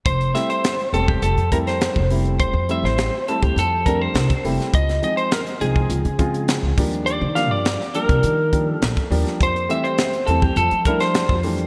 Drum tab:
HH |xxxxxxx-xxxxx-ox|x-x-x-xxx-x-xxox|xxxxxxx-xxxxx-ox|x-x-x-xxx-x-xxox|
SD |--o-o------oo---|---oo-------o--o|-o--o-------o---|--o-oo------o--o|
BD |o------o--o--o--|o------o--o--o--|o------o--o---o-|-------o--o--o--|

HH |xxxxxxx-xxxxx-ox|
SD |----o------oo---|
BD |o------o--o--o--|